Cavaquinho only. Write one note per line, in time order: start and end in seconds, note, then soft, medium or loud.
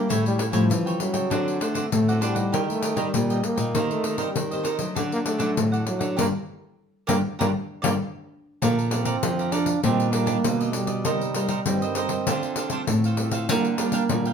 0.09 0.37 E4 medium
0.09 0.38 A4 medium
0.09 0.38 C#5 medium
0.09 0.38 G5 medium
0.38 0.51 E4 soft
0.38 0.52 A4 soft
0.38 0.52 C#5 medium
0.38 0.52 G5 medium
0.52 0.63 E4 medium
0.52 0.63 A4 medium
0.52 0.64 C#5 medium
0.52 0.63 G5 medium
0.86 1.13 A4 soft
0.86 1.12 C#5 soft
0.86 1.12 G5 soft
1.13 1.30 A4 soft
1.13 1.29 C#5 soft
1.13 1.29 G5 soft
1.30 1.59 D4 medium
1.30 1.59 C5 medium
1.30 1.60 D5 medium
1.30 1.60 F#5 medium
1.60 1.73 D4 soft
1.60 1.73 C5 medium
1.60 1.74 D5 medium
1.60 1.74 F#5 medium
1.74 1.85 D4 medium
1.74 1.85 C5 medium
1.74 1.85 D5 medium
1.74 1.85 F#5 medium
2.08 2.20 C5 soft
2.08 2.21 D5 soft
2.08 2.21 F#5 soft
2.21 2.36 D4 medium
2.21 2.35 C5 medium
2.21 2.34 D5 medium
2.21 2.33 F#5 medium
2.35 2.51 C5 soft
2.35 2.51 D5 soft
2.35 2.50 F#5 soft
2.52 2.81 G4 medium
2.52 2.81 A#4 medium
2.52 2.82 D#5 medium
2.52 2.82 G5 medium
2.82 2.95 G4 soft
2.82 2.96 A#4 medium
2.82 2.96 D#5 medium
2.82 2.96 G5 soft
2.96 3.07 G4 medium
2.96 3.07 A#4 medium
2.96 3.07 D#5 medium
2.96 3.07 G5 medium
3.30 3.57 A#4 soft
3.30 3.56 D#5 soft
3.30 3.55 G5 soft
3.56 3.73 A#4 soft
3.56 3.73 D#5 soft
3.56 3.72 G5 soft
3.74 4.02 D#4 medium
3.74 4.03 A#4 medium
3.74 4.04 C5 medium
3.74 4.04 D#5 medium
4.04 4.17 D#4 soft
4.04 4.17 A#4 soft
4.04 4.17 C5 medium
4.04 4.17 D#5 medium
4.18 4.28 D#4 medium
4.18 4.28 A#4 medium
4.18 4.29 C5 medium
4.18 4.29 D#5 medium
4.51 4.63 A#4 soft
4.51 4.63 C5 soft
4.51 4.64 D#5 soft
4.63 4.79 D#4 medium
4.63 4.78 A#4 medium
4.63 4.78 C5 medium
4.63 4.77 D#5 medium
4.78 4.95 A#4 soft
4.78 4.94 C5 soft
4.78 4.94 D#5 soft
4.95 5.24 D4 medium
4.95 5.24 A4 medium
4.95 5.25 D5 medium
4.95 5.25 F#5 medium
5.25 5.37 D4 soft
5.25 5.38 A4 soft
5.25 5.38 D5 soft
5.25 5.38 F#5 soft
5.38 5.50 D4 medium
5.38 5.50 A4 medium
5.38 5.50 D5 medium
5.38 5.50 F#5 medium
5.72 6.00 A4 soft
5.72 5.99 D5 soft
5.72 5.98 F#5 soft
5.99 6.16 A4 soft
5.99 6.16 D5 soft
5.99 6.15 F#5 soft
6.17 6.27 G4 medium
6.17 6.27 A#4 medium
6.17 6.27 D5 medium
7.07 7.18 G4 medium
7.07 7.18 A#4 medium
7.07 7.18 D5 medium
7.39 7.49 G4 medium
7.39 7.49 A#4 medium
7.39 7.49 D5 medium
7.82 7.94 G4 medium
7.82 7.94 A#4 medium
7.82 7.93 D5 medium
8.62 8.89 A4 medium
8.62 8.90 D5 medium
8.62 8.91 F5 medium
8.62 8.91 A#5 medium
8.91 9.04 A4 medium
8.91 9.04 D5 soft
8.91 9.04 F5 medium
8.91 9.05 A#5 medium
9.05 9.15 A4 medium
9.05 9.16 D5 medium
9.05 9.16 F5 medium
9.05 9.16 A#5 medium
9.39 9.51 D5 soft
9.39 9.51 F5 soft
9.39 9.52 A#5 soft
9.52 9.66 A4 medium
9.52 9.67 D5 medium
9.52 9.66 F5 medium
9.52 9.65 A#5 medium
9.66 9.82 D5 soft
9.66 9.82 F5 soft
9.66 9.81 A#5 medium
9.83 10.11 D4 medium
9.83 10.12 G4 medium
9.83 10.13 D5 medium
9.83 10.12 D#5 medium
10.12 10.25 D4 medium
10.12 10.25 G4 soft
10.12 10.26 D5 medium
10.12 10.25 D#5 medium
10.26 10.37 D4 medium
10.26 10.37 G4 medium
10.26 10.37 D5 medium
10.26 10.37 D#5 medium
10.59 10.87 G4 soft
10.59 10.86 D5 medium
10.59 10.86 D#5 soft
10.87 11.03 G4 soft
10.87 11.02 D5 soft
10.87 11.03 D#5 soft
11.04 11.33 D#4 medium
11.04 11.34 A#4 medium
11.04 11.34 C5 medium
11.04 11.35 D#5 medium
11.34 11.47 D#4 medium
11.34 11.47 A#4 medium
11.34 11.48 C5 medium
11.34 11.48 D#5 medium
11.49 11.59 D#4 medium
11.49 11.59 A#4 medium
11.49 11.59 C5 medium
11.49 11.59 D#5 medium
11.82 11.95 A#4 soft
11.82 11.96 C5 soft
11.82 11.96 D#5 soft
11.95 12.10 D#4 medium
11.95 12.10 A#4 medium
11.95 12.11 C5 medium
11.95 12.10 D#5 medium
12.11 12.26 A#4 soft
12.11 12.26 C5 soft
12.11 12.25 D#5 soft
12.28 12.56 D4 medium
12.28 12.57 A4 medium
12.28 12.57 C5 medium
12.28 12.57 F5 medium
12.57 12.70 D4 soft
12.57 12.71 A4 medium
12.57 12.71 C5 soft
12.57 12.71 F5 medium
12.72 12.81 D4 medium
12.72 12.81 A4 medium
12.72 12.82 C5 medium
12.72 12.81 F5 medium
13.05 13.33 A4 soft
13.05 13.32 C5 soft
13.05 13.31 F5 soft
13.32 13.48 A4 soft
13.32 13.47 C5 soft
13.32 13.47 F5 soft
13.49 13.77 D4 medium
13.49 13.78 A#4 medium
13.49 13.78 F5 medium
13.49 13.78 G5 medium
13.79 13.92 D4 medium
13.79 13.92 A#4 medium
13.79 13.92 F5 medium
13.79 13.92 G5 medium
13.93 14.03 D4 medium
13.93 14.03 A#4 medium
13.93 14.03 F5 medium
13.93 14.03 G5 medium
14.26 14.33 A#4 soft
14.26 14.33 F5 soft
14.26 14.33 G5 soft